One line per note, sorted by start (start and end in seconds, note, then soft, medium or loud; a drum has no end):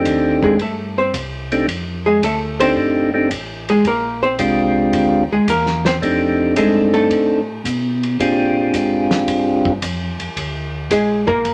0.00 0.56 A3 medium
0.00 0.56 C4 medium
0.00 0.56 D4 medium
0.00 0.57 D#4 medium
0.00 0.56 G4 medium
0.05 0.58 D#2 medium
0.05 kick soft
0.05 hi-hat pedal soft
0.05 ride medium
0.43 0.59 G#3 medium
0.43 0.59 G#4 medium
0.43 kick soft
0.59 1.12 G2 medium
0.59 0.97 A3 medium
0.59 0.97 A4 medium
0.59 kick soft
0.59 ride medium
0.98 1.14 C4 medium
0.98 1.14 C5 medium
1.14 1.66 C2 medium
1.14 kick soft
1.14 hi-hat pedal medium
1.14 ride medium
1.52 1.67 A3 medium
1.52 1.66 C4 medium
1.52 1.67 D4 medium
1.52 1.67 D#4 medium
1.52 1.67 G4 medium
1.52 ride soft
1.68 2.21 F2 medium
1.68 kick soft
1.68 ride medium
2.06 2.22 G#3 medium
2.06 2.22 G#4 medium
2.22 2.75 D2 medium
2.22 2.60 A3 medium
2.22 2.59 A4 medium
2.22 kick soft
2.22 hi-hat pedal soft
2.22 ride medium
2.60 3.10 A3 medium
2.60 3.10 C4 medium
2.60 2.77 C4 medium
2.60 3.11 D4 medium
2.60 3.11 D#4 medium
2.60 3.11 G4 medium
2.60 2.76 C5 loud
2.60 ride medium
2.76 3.29 G1 medium
2.76 kick soft
3.14 3.29 A3 medium
3.14 3.29 C4 medium
3.14 3.29 D4 medium
3.14 3.29 D#4 medium
3.14 3.29 G4 medium
3.31 3.83 A1 medium
3.31 kick soft
3.31 hi-hat pedal soft
3.31 ride medium
3.69 3.85 G#3 medium
3.69 3.85 G#4 medium
3.69 ride soft
3.85 4.38 A#1 medium
3.85 4.22 A#3 medium
3.85 4.22 A#4 medium
3.85 kick soft
3.85 ride soft
4.23 4.39 C4 medium
4.23 4.39 C5 medium
4.39 4.92 C2 medium
4.39 5.23 G#3 medium
4.39 5.23 C4 soft
4.39 5.24 D4 soft
4.39 5.24 F4 soft
4.39 5.24 G4 medium
4.39 kick soft
4.39 hi-hat pedal medium
4.39 ride medium
4.93 5.28 D2 medium
4.93 kick soft
4.93 ride medium
5.32 5.40 D2 soft
5.32 5.48 G#3 medium
5.32 5.48 G#4 medium
5.48 6.00 E2 medium
5.48 5.85 A#3 medium
5.48 5.85 A#4 medium
5.48 kick soft
5.48 hi-hat pedal medium
5.48 ride medium
5.66 snare soft
5.85 5.96 C4 medium
5.85 5.96 C5 medium
5.85 snare soft
5.85 ride soft
6.02 6.55 F2 medium
6.02 6.55 A3 medium
6.02 6.55 C4 medium
6.02 6.55 D4 medium
6.02 6.55 D#4 medium
6.02 6.55 G4 medium
6.02 kick soft
6.02 ride medium
6.56 7.09 G2 medium
6.56 6.94 G#3 medium
6.56 7.41 A3 medium
6.56 7.41 C4 soft
6.56 7.41 D4 medium
6.56 7.41 D#4 medium
6.56 6.93 G#4 medium
6.56 7.41 A4 medium
6.56 kick soft
6.56 hi-hat pedal medium
6.56 ride medium
6.94 7.61 A3 medium
6.94 7.61 A4 medium
6.94 ride soft
7.11 7.63 A2 medium
7.11 kick soft
7.11 ride medium
7.65 8.18 B2 medium
7.65 kick soft
7.65 hi-hat pedal medium
7.65 ride medium
8.03 ride soft
8.19 8.72 A#2 medium
8.19 9.73 C4 medium
8.19 9.72 D4 medium
8.19 9.72 F4 medium
8.19 9.73 G4 medium
8.19 9.72 G#4 medium
8.19 kick soft
8.19 ride medium
8.73 9.26 G#2 medium
8.73 kick soft
8.73 hi-hat pedal medium
8.73 ride medium
9.11 snare medium
9.11 ride soft
9.28 9.80 G2 medium
9.28 kick soft
9.28 ride medium
9.65 kick medium
9.82 10.17 F2 medium
9.82 kick soft
9.82 hi-hat pedal medium
9.82 ride medium
10.20 10.28 F2 soft
10.20 ride soft
10.37 10.89 D2 medium
10.37 kick soft
10.37 ride medium
10.91 11.43 A#1 medium
10.91 11.27 G#3 medium
10.91 11.27 G#4 medium
10.91 kick soft
10.91 hi-hat pedal soft
10.91 ride medium
11.27 11.54 A#3 medium
11.27 11.54 A#4 medium
11.27 kick soft
11.45 11.54 G1 medium
11.45 kick soft
11.45 ride medium